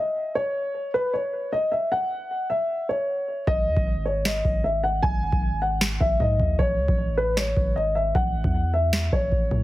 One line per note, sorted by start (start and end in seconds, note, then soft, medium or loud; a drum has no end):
0.00 0.33 D#5 medium
0.35 0.90 C#5 loud
0.94 1.12 B4 medium
1.14 1.50 C#5 medium
1.52 1.70 D#5 medium
1.72 1.90 E5 medium
1.92 2.47 F#5 medium
2.50 2.87 E5 medium
2.89 3.44 C#5 medium
3.47 3.68 G#1 loud
3.47 4.02 D#5 loud
3.47 kick loud
3.67 3.76 D#2 loud
3.77 4.42 G#1 loud
3.77 kick loud
4.05 4.23 C#5 medium
4.25 4.62 D#5 medium
4.25 snare loud
4.45 5.01 G#1 loud
4.45 kick medium
4.64 4.82 E5 medium
4.83 5.01 F#5 medium
5.03 5.31 G#1 loud
5.03 5.58 G#5 loud
5.03 kick loud
5.33 5.98 G#1 loud
5.33 kick loud
5.62 5.98 F#5 medium
5.81 snare loud
6.00 6.19 G#1 loud
6.00 6.18 E5 medium
6.00 kick medium
6.20 6.39 G#2 loud
6.20 6.57 D#5 medium
6.20 kick medium
6.40 6.58 D#2 loud
6.40 kick loud
6.59 6.80 A1 loud
6.59 7.14 C#5 loud
6.59 kick loud
6.79 6.88 C#2 loud
6.88 7.54 A1 loud
6.88 kick loud
7.17 7.35 B4 medium
7.37 7.74 C#5 medium
7.37 snare loud
7.57 8.13 G#1 loud
7.57 kick medium
7.76 7.94 D#5 medium
7.95 8.13 E5 medium
8.15 8.43 A1 loud
8.15 8.70 F#5 medium
8.15 kick loud
8.44 9.10 E2 loud
8.44 kick loud
8.74 9.10 E5 medium
8.93 snare loud
9.12 9.31 A1 loud
9.12 9.63 C#5 medium
9.12 kick medium
9.32 9.51 A1 loud
9.32 kick medium
9.51 9.63 A2 loud
9.51 kick loud